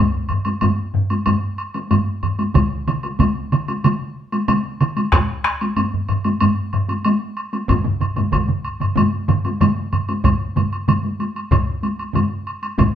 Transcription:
0.29 taiko low-mid, high woodblock
0.45 taiko high, high woodblock
0.61 taiko low-mid, taiko high, high woodblock
0.94 taiko low-mid
1.10 taiko high, high woodblock
1.26 taiko low-mid, taiko high, high woodblock
1.58 high woodblock
1.74 taiko high, high woodblock
1.91 taiko low-mid, taiko high, high woodblock
2.23 taiko low-mid, high woodblock
2.39 taiko high, high woodblock
2.55 taiko, taiko mid, taiko high, high woodblock
2.88 taiko mid, high woodblock
3.03 taiko high, high woodblock
3.20 taiko, taiko mid, taiko high, high woodblock
3.52 taiko mid, high woodblock
3.68 taiko high, high woodblock
3.84 taiko mid, taiko high, high woodblock
4.32 taiko high, high woodblock
4.48 taiko mid, taiko high, high woodblock
4.81 taiko mid, high woodblock
4.97 taiko high, high woodblock
5.12 taiko rim, taiko, taiko high, high woodblock
5.45 taiko rim, high woodblock
5.61 taiko high, high woodblock
5.77 taiko low-mid, taiko high, high woodblock
5.94 taiko low-mid
6.09 taiko low-mid, high woodblock
6.24 taiko high, high woodblock
6.41 taiko low-mid, taiko high, high woodblock
6.73 taiko low-mid, high woodblock
6.89 taiko high, high woodblock
7.05 taiko high, high woodblock
7.37 high woodblock
7.53 taiko high, high woodblock
7.69 taiko, taiko low-mid, taiko mid, taiko high, high woodblock
7.85 taiko low-mid, taiko mid
8.00 taiko low-mid, taiko mid, high woodblock
8.16 taiko low-mid, taiko mid, taiko high, high woodblock
8.32 taiko, taiko low-mid, taiko mid, taiko high, high woodblock
8.49 taiko low-mid, taiko mid
8.65 high woodblock
8.80 taiko low-mid, taiko mid, high woodblock
8.96 taiko low-mid, taiko mid, taiko high, high woodblock
9.28 taiko low-mid, taiko mid, high woodblock
9.45 taiko high, high woodblock
9.61 taiko low-mid, taiko mid, taiko high, high woodblock
9.92 taiko low-mid, taiko mid, high woodblock
10.09 taiko high, high woodblock
10.24 taiko, taiko low-mid, taiko mid, taiko high, high woodblock
10.40 taiko high
10.56 taiko low-mid, taiko mid, taiko high, high woodblock
10.72 taiko high, high woodblock
10.88 taiko low-mid, taiko mid, taiko high, high woodblock
11.03 taiko high
11.20 taiko high, high woodblock
11.36 taiko high, high woodblock
11.51 taiko, taiko low-mid, taiko mid, taiko high, high woodblock
11.67 taiko high
11.83 taiko high, high woodblock
11.99 taiko high, high woodblock
12.14 taiko low-mid, taiko mid, taiko high, high woodblock
12.31 taiko high
12.47 high woodblock
12.62 taiko high, high woodblock
12.78 taiko, taiko low-mid, taiko mid, taiko high, high woodblock

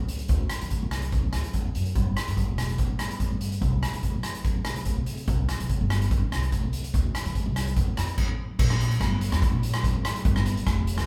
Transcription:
0.00 C#2
0.08 closed hi-hat
0.19 closed hi-hat
0.28 D2, kick, closed hi-hat
0.50 cross-stick, closed hi-hat
0.61 D3, closed hi-hat
0.70 kick, closed hi-hat
0.83 C2
0.91 cross-stick, closed hi-hat
1.02 closed hi-hat
1.12 kick, closed hi-hat
1.33 D2, cross-stick, closed hi-hat
1.44 closed hi-hat
1.53 E2, kick, closed hi-hat
1.75 F#2, closed hi-hat
1.85 closed hi-hat
1.95 G1, kick, closed hi-hat
2.17 cross-stick, closed hi-hat
2.28 G2, closed hi-hat
2.37 kick, closed hi-hat
2.49 E1
2.58 cross-stick, closed hi-hat
2.69 closed hi-hat
2.78 kick, closed hi-hat
2.99 G1, cross-stick, closed hi-hat
3.11 closed hi-hat
3.20 kick, closed hi-hat
3.31 G2
3.41 closed hi-hat
3.52 closed hi-hat
3.61 C2, kick, closed hi-hat
3.83 cross-stick, closed hi-hat
3.93 C3, closed hi-hat
4.03 kick, closed hi-hat
4.14 A1
4.23 cross-stick, closed hi-hat
4.35 closed hi-hat
4.44 kick, closed hi-hat
4.65 C2, cross-stick, closed hi-hat
4.76 closed hi-hat
4.85 kick, closed hi-hat
4.97 C3
5.06 closed hi-hat
5.17 closed hi-hat
5.27 C2, kick, closed hi-hat
5.49 cross-stick, closed hi-hat
5.60 C3, closed hi-hat
5.69 kick, closed hi-hat
5.81 G1
5.90 cross-stick, closed hi-hat
6.02 closed hi-hat
6.11 kick, closed hi-hat
6.32 C2, cross-stick, closed hi-hat
6.42 closed hi-hat
6.52 kick, closed hi-hat
6.63 C2
6.73 closed hi-hat
6.84 closed hi-hat
6.94 D2, kick, closed hi-hat
7.15 cross-stick, closed hi-hat
7.25 D3, closed hi-hat
7.35 kick, closed hi-hat
7.46 C2
7.56 cross-stick, closed hi-hat
7.67 closed hi-hat
7.76 F2, kick, closed hi-hat
7.97 F2, cross-stick, closed hi-hat
8.08 closed hi-hat
8.18 kick, crash
8.59 A#1, kick, crash
8.70 cross-stick
8.80 closed hi-hat
8.91 closed hi-hat
9.00 G1, kick, cross-stick, closed hi-hat
9.21 closed hi-hat
9.32 F2, cross-stick, closed hi-hat
9.42 kick, closed hi-hat
9.52 A#1
9.63 closed hi-hat
9.74 cross-stick, closed hi-hat
9.84 kick, closed hi-hat
9.93 G#1
10.05 cross-stick, closed hi-hat
10.16 closed hi-hat
10.25 G1, kick, closed hi-hat
10.36 cross-stick
10.46 closed hi-hat
10.57 closed hi-hat
10.66 F1, kick, cross-stick, closed hi-hat
10.87 closed hi-hat
10.97 D2, cross-stick, closed hi-hat

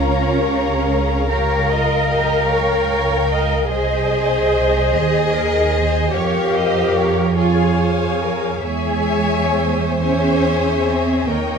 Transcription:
Already playing: C#2 C#4 C#5 F5 A#5
0.00 F4 A#4
0.42 G4
0.86 G#4
1.29 G4 A#4 C#5 A#5
1.70 F4 D#5
2.10 G4 D#5
2.49 A#4 C#5 G5
2.89 C#5
3.30 D#5
3.70 C2 G#4 C5 D#5 G#5
4.94 D#2 D#5 G#5
5.35 A#4
5.74 C5
6.13 F2 G4 A#4 C#5 F5
6.54 C5 D#5
6.95 A#4 C#5
7.37 F4 G#4 C#5 F5 G#5
7.79 C5
8.22 A#4
8.64 E2 G#3 G#4 C#5 E5 G#5
9.08 C#5
9.55 C5
10.02 C#4 G#4 C#5 E5 G#5
10.87 C4
11.28 D#2 A#3 A#4 C#5 D#5 G5

